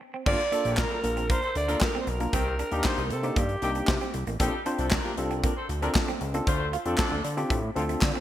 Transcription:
0.01 muted clean electric guitar stroke
0.14 clean electric guitar C4
0.26 analog synth bass G1, horn section D3 A#3 F4, tine electric piano A#3 D4 F4 A4, clean electric guitar C4, alto saxophone D5, kick, crash
0.39 muted clean electric guitar stroke, closed hi-hat
0.52 tine electric piano A#3 D4 F4 A4, clean electric guitar D4, closed hi-hat
0.65 analog synth bass A#1, horn section D3 A#3 G4, closed hi-hat
0.77 horn section G3 F4 A#4, clean electric guitar D4, alto saxophone A#4, kick, snare, clap
0.90 tine electric piano F4 A4, muted clean electric guitar stroke
1.03 analog synth bass A#1, tine electric piano A#3 D4 F4 A#4, closed hi-hat
1.17 clean electric guitar C4, closed hi-hat
1.30 horn section G3 F4 A#4, clean electric guitar A#3, alto saxophone C5, kick, closed hi-hat
1.42 horn section C4 A4 C5, closed hi-hat
1.55 analog synth bass D2, alto saxophone D5, muted clean electric guitar stroke, closed hi-hat
1.68 horn section G3 F4 A#4, tine electric piano A#3 D4 F4 A4, clean electric guitar D4, closed hi-hat
1.81 alto saxophone A#4, kick, snare, clap
1.95 clean electric guitar C4
2.01 alto saxophone C5
2.07 analog synth bass B1, alto saxophone A#4, muted clean electric guitar stroke, closed hi-hat
2.20 tine electric piano A#3 D4 F4 A#4, clean electric guitar A#3, closed hi-hat
2.33 analog synth bass C2, horn section D#3 C4 G4, clean electric guitar C4, kick, closed hi-hat
2.47 muted clean electric guitar stroke
2.59 clean electric guitar D4, closed hi-hat
2.71 analog synth bass D#2, horn section G3 D#4 A#4, tine electric piano A#3 D4 D#4 G4, closed hi-hat
2.84 horn section G3 D#4 C5, clean electric guitar D4, kick, snare, clap
2.98 analog synth bass C2, muted clean electric guitar stroke, closed hi-hat
3.10 analog synth bass C3, alto saxophone A4, closed hi-hat
3.23 tine electric piano A#3 D4 D#4 G4, clean electric guitar C4, closed hi-hat
3.36 analog synth bass G2, clean electric guitar A#3, alto saxophone G4, kick, closed hi-hat
3.49 closed hi-hat
3.62 analog synth bass C2, horn section D#3 C4 G4, tine electric piano A#3 D4 D#4 G4, muted clean electric guitar stroke, closed hi-hat
3.75 clean electric guitar D4, closed hi-hat
3.87 analog synth bass C3, kick, snare, clap
4.01 clean electric guitar C4, closed hi-hat
4.14 analog synth bass C2, muted clean electric guitar stroke, closed hi-hat
4.27 analog synth bass A1, clean electric guitar A#3, closed hi-hat
4.40 analog synth bass A#1, horn section G3 D#4 G4, clean electric guitar A#3, tine electric piano C4 D4 F4 A4, kick, closed hi-hat
4.53 muted clean electric guitar stroke
4.66 tine electric piano C4 D4 F4 C5, clean electric guitar D4, closed hi-hat
4.79 analog synth bass C2, horn section F3 D4 A4, closed hi-hat
4.91 horn section F3 D4 A#4, clean electric guitar D4, kick, snare, clap
5.04 tine electric piano F4 G4, muted clean electric guitar stroke
5.17 analog synth bass C2, tine electric piano C4 D4 F4 A4, closed hi-hat
5.31 clean electric guitar C4, closed hi-hat
5.44 horn section F3 D4 A#4, clean electric guitar A#3, kick, closed hi-hat
5.57 horn section C4 A4 C5
5.69 analog synth bass D2, muted clean electric guitar stroke, closed hi-hat
5.82 horn section F3 D4 A#4, tine electric piano C4 D4 F4 A4, clean electric guitar D4, closed hi-hat
5.95 kick, snare, clap
6.08 clean electric guitar C4, closed hi-hat
6.21 analog synth bass C#2, muted clean electric guitar stroke, closed hi-hat
6.34 clean electric guitar A#3, tine electric piano C4 D4 F4 A4, closed hi-hat
6.47 analog synth bass D2, horn section A3 F4 C5, clean electric guitar D4, kick, closed hi-hat
6.60 muted clean electric guitar stroke
6.73 clean electric guitar F4, closed hi-hat
6.85 analog synth bass F2, horn section F3 D4 A4, tine electric piano C4 D4 F4 A4, closed hi-hat
6.98 horn section F3 D4 A4, clean electric guitar D4, kick, snare, clap
7.11 analog synth bass D2, muted clean electric guitar stroke
7.24 analog synth bass D3, closed hi-hat
7.37 tine electric piano C4 D4 F4 G4, clean electric guitar C4, closed hi-hat
7.50 analog synth bass A2, clean electric guitar A3, kick, closed hi-hat
7.76 analog synth bass D2, horn section D3 C4 F4, tine electric piano C4 D4 F4 A4, muted clean electric guitar stroke, closed hi-hat
7.89 clean electric guitar A3, closed hi-hat
8.01 analog synth bass D3, kick, snare, clap
8.15 clean electric guitar C4

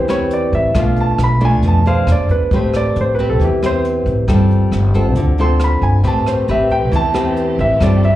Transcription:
Already playing: upright bass E2, nylon-string guitar E3, grand piano C5
0.08 nylon-string guitar C4 G4 B4, grand piano C#5, cross-stick, closed hi-hat
0.31 grand piano D5, closed hi-hat
0.53 upright bass A1, grand piano E5, kick, closed hi-hat
0.74 upright bass B1, nylon-string guitar B2 A3 D4 F4, kick, cross-stick, closed hi-hat
0.79 grand piano F5
0.96 closed hi-hat
1.01 grand piano A5
1.18 upright bass B1, cross-stick, closed hi-hat
1.24 grand piano B5
1.40 nylon-string guitar A3 D4 F4, kick, closed hi-hat
1.45 grand piano G#5
1.63 upright bass F2, nylon-string guitar B2, kick, closed hi-hat
1.68 grand piano A5
1.86 nylon-string guitar D4 G#4 C5, grand piano F5, closed hi-hat
2.07 upright bass E2, cross-stick, closed hi-hat
2.12 grand piano D5
2.29 upright bass E2, grand piano B4, kick, closed hi-hat
2.51 upright bass A1, nylon-string guitar A3 C4 G4 B4, kick, closed hi-hat
2.56 grand piano C5
2.74 grand piano D5, cross-stick, closed hi-hat
2.96 upright bass A1, closed hi-hat
3.01 grand piano C5
3.15 grand piano B4, kick, closed hi-hat
3.19 nylon-string guitar C4 G4 B4
3.29 grand piano A4
3.40 upright bass E2, nylon-string guitar E3, kick, closed hi-hat
3.45 grand piano G4
3.62 nylon-string guitar C4 G4 B4, grand piano C5, cross-stick, closed hi-hat
3.85 closed hi-hat
4.06 upright bass A1, kick, closed hi-hat
4.28 upright bass G1, nylon-string guitar G3 C4 F4 A4, kick, cross-stick, closed hi-hat
4.51 closed hi-hat
4.71 upright bass G1, cross-stick, closed hi-hat
4.94 nylon-string guitar C4 F4 A4, kick, closed hi-hat
5.15 upright bass D2, nylon-string guitar D3, kick, closed hi-hat
5.38 nylon-string guitar C4 F4 A4, grand piano C6, closed hi-hat
5.60 cross-stick, closed hi-hat
5.64 grand piano B5
5.82 upright bass G1, grand piano G#5, kick, closed hi-hat
6.03 upright bass A1, nylon-string guitar A3 C4 G4 B4, string section A3 C4 G4 B4, grand piano A5, kick, closed hi-hat
6.26 grand piano C5, cross-stick, closed hi-hat
6.48 upright bass A1, nylon-string guitar C4 G4 B4, grand piano E5, closed hi-hat
6.70 grand piano G5, kick, closed hi-hat
6.92 upright bass E2, nylon-string guitar E3, kick, closed hi-hat
6.96 grand piano A5
7.14 nylon-string guitar C4 G4 B4, cross-stick, closed hi-hat
7.37 closed hi-hat
7.59 upright bass A1, grand piano E5, kick, closed hi-hat
7.80 upright bass G1, nylon-string guitar G3 C4 F4 A4, string section C4 D4, grand piano D5, kick, cross-stick, closed hi-hat
8.03 grand piano E5, closed hi-hat

